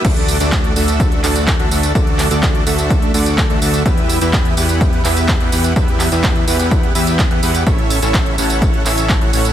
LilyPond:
<<
  \new Staff \with { instrumentName = "Supersaw synth" } { \time 4/4 \key d \major \tempo 4 = 126 <a d' fis' a' d''>8. <a d' fis' a' d''>8. <a d' fis' a' e''>4 <a d' fis' a' d''>8. <a d' fis' a' e''>16 <a d' fis' a' e''>8 | <a d' fis' a' d''>8. <a d' fis' a' d''>8. <a d' fis' a' e''>4 <a d' fis' a' d''>8. <a d' fis' a' e''>16 <a d' fis' a' e''>8 | <b e' g' b' e''>8. <b e' g' b' e''>8. <b e' g' b' fis''>4 <b e' g' b' e''>8. <b e' g' b' fis''>16 <b e' g' b' fis''>8 | <b e' g' b' e''>8. <b e' g' b' e''>8. <b e' g' b' fis''>4 <b e' g' b' e''>8. <b e' g' b' fis''>16 <b e' g' b' fis''>8 |
<cis' e' a' cis''>8. <cis' e' a' cis'' e''>8. <cis' e' a' cis'' fis''>4 <cis' e' a' cis'' e''>8. <cis' e' a' cis'' fis''>16 <cis' e' a' cis'' fis''>8 | }
  \new Staff \with { instrumentName = "Analog synth bass" } { \clef bass \time 4/4 \key d \major d,8. d,8. d,4 d,8. d,16 d,8 | d,8. d,8. d,4 d,8. d,16 d,8 | e,8. e,8. e,4 e,8. e,16 e,8 | e,8. e,8. e,4 e,8. e,16 e,8 |
a,,8. a,,8. a,,4 a,,8. a,,16 a,,8 | }
  \new DrumStaff \with { instrumentName = "Drums" } \drummode { \time 4/4 <cymc hh bd tamb>16 hh16 <hho tamb>16 <hh tamb>16 <hc hh bd tamb>16 hh16 <hho tamb>16 <hh tamb>16 <hh bd tamb>16 hh16 <hc hho tamb>16 <hh tamb>16 <hc hh bd tamb>16 hh16 <hho tamb>16 <hh tamb>16 | <hh bd tamb>16 hh16 <hc hho tamb>16 <hh tamb>16 <hc hh bd tamb>16 hh16 <hho tamb>16 <hh tamb>16 <hh bd tamb>16 hh16 <hho tamb>16 <hh tamb>16 <hc hh bd tamb>16 hh16 <hho tamb>16 <hh tamb>16 | <hh bd tamb>16 hh16 <hho tamb>16 <hh tamb>16 <hc hh bd tamb>16 hh16 <hho tamb>16 <hh tamb>16 <hh bd tamb>16 hh16 <hc hho tamb>16 <hh tamb>16 <hc hh bd tamb>16 hh16 <hho tamb>16 <hh tamb>16 | <hh bd tamb>16 hh16 <hc hho tamb>16 <hh tamb>16 <hc hh bd tamb>16 hh16 <hho tamb>16 <hh tamb>16 <hh bd tamb>16 hh16 <hho tamb>16 <hh tamb>16 <hc hh bd tamb>16 hh16 <hho tamb>16 <hh tamb>16 |
<hh bd tamb>16 hh16 <hho tamb>16 <hh tamb>16 <hc hh bd tamb>16 hh16 <hho tamb>16 <hh tamb>16 <hh bd tamb>16 hh16 <hc hho tamb>16 <hh tamb>16 <hc hh bd tamb>16 hh16 <hho tamb>16 <hh tamb>16 | }
>>